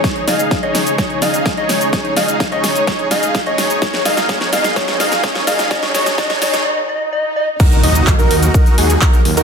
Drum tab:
CC |----------------|----------------|----------------|----------------|
HH |xxoxxxoxxxoxxxox|xxoxxxoxxxoxxxox|xxoxxxoxxxoxxxox|xxoxxxox--------|
SH |x-xxx-xxx-xxx-xx|x-xxx-xxx-xxx-xx|x-xxx-xxx-xxx-xx|x-xxx-xx--------|
CP |----------------|----------------|----------------|----------------|
SD |o-o-o-o-o-o-o-o-|o-o-o-o-o-o-o-o-|oooooooooooooooo|oooooooo--------|
BD |o---o---o---o---|o---o---o---o---|o---o---o---o---|o---o-----------|

CC |x---------------|
HH |xxoxxxoxxxoxxxox|
SH |xx-xxx-xxx-xxx-x|
CP |----x-------x---|
SD |----------------|
BD |o---o---o---o---|